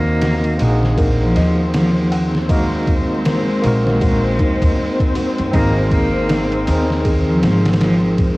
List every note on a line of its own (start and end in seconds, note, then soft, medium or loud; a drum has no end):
0.00 0.57 D#2 loud
0.00 0.54 A#3 medium
0.00 0.55 A#3 medium
0.00 8.37 C4 medium
0.00 0.19 D#4 medium
0.00 0.56 D#4 medium
0.00 0.57 F#4 medium
0.00 0.58 A#4 loud
0.00 8.37 C5 medium
0.22 0.95 F#4 medium
0.22 snare loud
0.22 ride medium
0.44 ride soft
0.58 1.33 A#1 loud
0.58 2.45 A#3 medium
0.58 2.46 D#4 medium
0.58 2.47 F#5 medium
0.58 ride medium
0.64 2.48 G#4 medium
0.83 snare soft
0.97 1.34 A#4 loud
0.97 kick loud
0.97 ride medium
1.21 1.69 F3 medium
1.35 3.61 D#2 medium
1.35 1.60 D#5 medium
1.35 snare soft
1.35 ride medium
1.74 2.09 F3 medium
1.74 snare loud
1.74 ride medium
2.11 2.46 F#5 medium
2.11 ride medium
2.35 snare soft
2.49 3.04 G#3 medium
2.49 2.61 A#3 medium
2.49 2.62 D#4 medium
2.49 2.62 F#4 medium
2.49 2.63 A#4 medium
2.49 2.86 D#5 medium
2.49 kick loud
2.49 ride medium
2.87 kick loud
2.87 ride medium
3.11 3.77 G#3 loud
3.25 3.98 A#4 medium
3.25 snare loud
3.25 ride medium
3.62 4.37 A#1 loud
3.62 5.49 A#3 medium
3.62 5.50 D#4 medium
3.62 5.51 F#4 medium
3.62 ride medium
3.67 5.52 A#4 medium
3.87 5.41 G#3 loud
3.87 snare soft
4.01 4.38 F#4 loud
4.01 kick loud
4.01 ride medium
4.39 5.12 D#4 loud
4.39 kick medium
4.39 ride medium
4.62 4.76 D#2 medium
4.62 kick loud
4.62 ride medium
5.00 kick medium
5.00 ride medium
5.15 5.50 F#4 medium
5.15 ride medium
5.38 5.52 F#2 medium
5.38 ride soft
5.51 6.64 G#1 loud
5.51 5.88 A#3 loud
5.51 6.63 C4 medium
5.51 6.26 C4 medium
5.51 6.63 D#4 medium
5.51 6.64 G#4 medium
5.51 kick loud
5.51 ride medium
5.57 6.65 A#4 loud
5.91 6.61 A#3 medium
5.91 kick medium
5.91 ride medium
6.29 7.02 D#4 medium
6.29 snare loud
6.29 ride medium
6.52 ride soft
6.65 7.41 D#2 loud
6.65 8.37 C4 medium
6.65 8.37 D#4 medium
6.65 8.37 G#4 medium
6.65 ride medium
6.70 8.37 A#4 medium
6.90 snare soft
7.05 7.41 G#4 loud
7.05 kick loud
7.05 ride medium
7.28 7.77 F3 medium
7.43 8.37 G#1 medium
7.43 7.68 A#4 medium
7.43 snare loud
7.43 ride medium
7.66 snare loud
7.66 ride medium
7.73 snare medium
7.73 ride medium
7.80 8.16 F3 medium
7.80 snare loud
7.80 ride medium
8.18 8.37 C5 medium
8.18 kick medium
8.18 ride medium